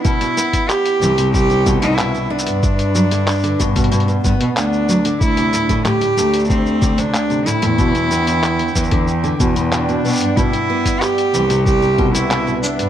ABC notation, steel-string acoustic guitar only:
X:1
M:4/4
L:1/16
Q:1/4=93
K:Clyd
V:1 name="Steel-string acoustic guitar" clef=bass
B,, B,, B,4 E, C, z C, B,, B,, B,, B,, B,2 | z2 F, D, z D, B,, B,, B,, B,, B,4 F, D, | z C, A,, A,, A,, A,, A,4 D, C, z C, A,, A,, | B,, B,, B,4 E, D, z D, B,, B,, B,, B,, B,2 |
B,, B,, B,4 E, C, z C, B,, B,, B,, B,, B,2 |]